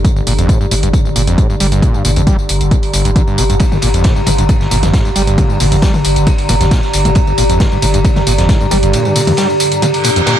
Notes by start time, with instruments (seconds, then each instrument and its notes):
Already playing: synth drone G2 D3, ambient pad G4 D5 A#5
0.05 acid bass G2, kick, closed hi-hat, tambourine
0.16 acid bass G1, tambourine
0.27 sub bass G1, acid bass A#2, open hi-hat, tambourine
0.38 sub bass G1, acid bass F2, closed hi-hat, tambourine
0.49 acid bass A2, kick, closed hi-hat, tambourine
0.61 acid bass G2, tambourine
0.71 sub bass G1, acid bass A2, open hi-hat, tambourine
0.83 sub bass G1, acid bass G2, closed hi-hat, tambourine
0.93 kick, closed hi-hat, tambourine
1.05 acid bass G1, tambourine
1.16 sub bass G1, acid bass A#2, open hi-hat, tambourine
1.27 sub bass G1, acid bass F2, closed hi-hat, tambourine
1.38 acid bass A2, kick, closed hi-hat, tambourine
1.50 acid bass G2, tambourine
1.60 sub bass G1, acid bass G3, open hi-hat, tambourine
1.72 sub bass G1, acid bass G2, closed hi-hat, tambourine
1.82 acid bass A#2, kick, closed hi-hat, tambourine
1.94 acid bass G2, tambourine
2.05 sub bass G1, acid bass A#2, open hi-hat, tambourine
2.16 sub bass G1, acid bass F2, closed hi-hat, tambourine
2.27 acid bass G3, kick, closed hi-hat, tambourine
2.39 tambourine
2.49 sub bass G1, open hi-hat, tambourine
2.61 sub bass G1, closed hi-hat, tambourine
2.71 acid bass A#2, kick, closed hi-hat, tambourine
2.83 open hi-hat, tambourine
2.94 acid bass G1, sub bass G1, open hi-hat, tambourine
3.05 sub bass G1, acid bass G2, closed hi-hat, tambourine
3.16 acid bass D3, kick, closed hi-hat, tambourine
3.27 acid bass G2, tambourine
3.38 sub bass G1, acid bass C3, open hi-hat, tambourine
3.50 sub bass G1, acid bass G2, closed hi-hat, tambourine
3.60 acid bass G2, kick, closed hi-hat, ride, tambourine
3.72 acid bass G1, mid tom, tambourine
3.82 sub bass G1, acid bass A#2, open hi-hat, ride, tambourine
3.94 sub bass G1, acid bass F2, closed hi-hat, tambourine
4.04 acid bass A2, kick, snare, closed hi-hat, ride, tambourine
4.16 acid bass G2, tambourine
4.26 sub bass G1, acid bass A2, open hi-hat, mid tom, ride, tambourine
4.38 sub bass G1, acid bass G2, closed hi-hat, tambourine
4.49 kick, closed hi-hat, ride, tambourine
4.61 acid bass G1, snare, tambourine
4.71 sub bass G1, acid bass A#2, open hi-hat, ride, tambourine
4.83 sub bass G1, acid bass F2, snare, closed hi-hat, mid tom, tambourine
4.94 acid bass A2, kick, snare, closed hi-hat, ride, tambourine
5.05 acid bass G2, tambourine
5.16 sub bass G1, acid bass G3, open hi-hat, ride, tambourine
5.27 sub bass G1, acid bass G2, closed hi-hat, tambourine
5.38 acid bass A#2, kick, closed hi-hat, mid tom, ride, tambourine
5.50 acid bass G2, tambourine
5.60 sub bass G1, acid bass A#2, open hi-hat, tambourine
5.72 sub bass G1, acid bass F2, closed hi-hat, tambourine
5.82 acid bass G3, kick, snare, closed hi-hat, ride, tambourine
5.94 mid tom, tambourine
6.05 sub bass G1, open hi-hat, ride, tambourine
6.16 sub bass G1, closed hi-hat, tambourine
6.27 acid bass A#2, kick, closed hi-hat, ride, tambourine
6.38 open hi-hat, ride, tambourine
6.49 sub bass G1, acid bass A#2, open hi-hat, mid tom, ride, tambourine
6.61 sub bass G1, acid bass F2, snare, closed hi-hat, tambourine
6.71 acid bass A#2, kick, snare, closed hi-hat, ride, tambourine
6.83 snare, tambourine
6.93 sub bass G1, snare, open hi-hat, ride, tambourine
7.05 sub bass G1, acid bass A2, closed hi-hat, mid tom, ride, tambourine
7.15 acid bass G2, kick, closed hi-hat, ride, tambourine
7.27 acid bass G1, tambourine
7.38 sub bass G1, acid bass A#2, open hi-hat, ride, tambourine
7.50 sub bass G1, acid bass F2, closed hi-hat, tambourine
7.60 acid bass A2, kick, snare, closed hi-hat, mid tom, ride, tambourine
7.72 acid bass G2, tambourine
7.82 sub bass G1, acid bass A2, open hi-hat, ride, tambourine
7.94 sub bass G1, acid bass G2, closed hi-hat, tambourine
8.05 kick, closed hi-hat, ride, tambourine
8.16 acid bass G1, snare, mid tom, tambourine
8.27 sub bass G1, acid bass A#2, open hi-hat, ride, tambourine
8.38 sub bass G1, acid bass F2, snare, closed hi-hat, tambourine
8.49 acid bass A2, kick, snare, closed hi-hat, ride, tambourine
8.61 acid bass G2, tambourine
8.71 sub bass G1, acid bass G3, open hi-hat, mid tom, ride, tambourine
8.83 sub bass G1, acid bass G2, closed hi-hat, tambourine
8.93 acid bass A#2, closed hi-hat, ride, tambourine
9.05 acid bass G2, tambourine
9.16 acid bass A#2, open hi-hat, tambourine
9.27 acid bass F2, closed hi-hat, mid tom, tambourine
9.37 acid bass G3, snare, closed hi-hat, ride, tambourine
9.50 tambourine
9.60 open hi-hat, ride, tambourine
9.72 closed hi-hat, tambourine
9.82 acid bass A#2, closed hi-hat, mid tom, ride, tambourine, reverse cymbal
9.94 open hi-hat, ride, tambourine
10.04 acid bass A#2, open hi-hat, ride, tambourine
10.16 acid bass F2, closed hi-hat, tambourine
10.26 acid bass A#2, snare, closed hi-hat, ride, tambourine